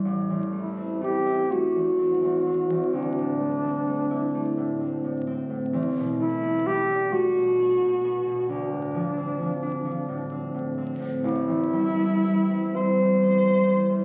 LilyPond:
<<
  \new Staff \with { instrumentName = "Alto saxophone" } { \time 6/8 \key a \dorian \tempo 4. = 43 r8 e'8 g'8 fis'4. | d'2~ d'8 r8 | r8 e'8 g'8 fis'4. | d'2~ d'8 r8 |
e'4. c''4. | }
  \new Staff \with { instrumentName = "Harp" } { \clef bass \time 6/8 \key a \dorian <a,, e'>16 e,16 a16 c'16 a16 e'16 a16 e,16 c'16 e,16 c'16 e,16 | d,16 a,16 a16 c'16 a16 e'16 a16 a,16 c'16 a,16 c'16 a,16 | e,16 b,16 a16 b16 a16 d'16 a16 b,16 b16 b,16 b16 b,16 | d,16 a,16 f16 c'16 f16 d'16 f16 a,16 c'16 a,16 c'16 a,16 |
a,,16 e,16 g16 b16 g16 c'16 g16 e,16 b16 e,16 b16 e,16 | }
>>